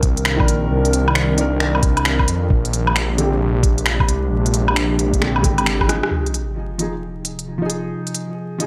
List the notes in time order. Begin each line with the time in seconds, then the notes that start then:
Already playing: C2 D#3 C4 D4 A#4
0.03 kick, closed hi-hat
0.17 closed hi-hat
0.25 finger snap
0.37 D#3 D4, kick, low woodblock
0.45 A#1 A#4, closed hi-hat
0.70 C2
0.85 closed hi-hat
0.93 closed hi-hat
1.08 low woodblock
1.15 finger snap
1.36 D#3 D4, closed hi-hat
1.41 A#4
1.57 D#3 D4, finger snap
1.64 A#4
1.75 low woodblock
1.83 C2, kick, closed hi-hat
1.97 closed hi-hat, low woodblock
2.05 finger snap
2.19 kick, low woodblock
2.28 F2, closed hi-hat
2.49 A#1 C3 G#3 D4 G4, kick
2.65 closed hi-hat
2.73 closed hi-hat
2.87 low woodblock
2.96 finger snap
3.17 D3 G#3 C4, closed hi-hat
3.21 G4
3.63 kick, closed hi-hat
3.78 closed hi-hat
3.86 finger snap
4.00 kick, low woodblock
4.08 C2, closed hi-hat
4.30 A#1 G4
4.46 closed hi-hat
4.54 closed hi-hat
4.68 low woodblock
4.76 finger snap
4.99 closed hi-hat
5.13 kick, closed hi-hat
5.19 D3 G#3 C4, finger snap
5.23 G4
5.36 low woodblock
5.41 G#1 D3 G#3 C4, kick, closed hi-hat
5.46 G4
5.58 closed hi-hat, low woodblock
5.66 finger snap
5.81 kick, cross-stick, low woodblock
5.87 F3 D#4 G#4, cross-stick, closed hi-hat
6.03 cross-stick
6.11 C3 F3 D#4 G#4, sub drop
6.26 closed hi-hat
6.34 closed hi-hat
6.78 F3 D#4 G#4, closed hi-hat
7.25 closed hi-hat
7.39 closed hi-hat
7.58 F3
7.62 D#4 G#4
7.70 closed hi-hat
7.91 F4
8.07 closed hi-hat
8.14 closed hi-hat
8.58 F3 D#4 G#4, closed hi-hat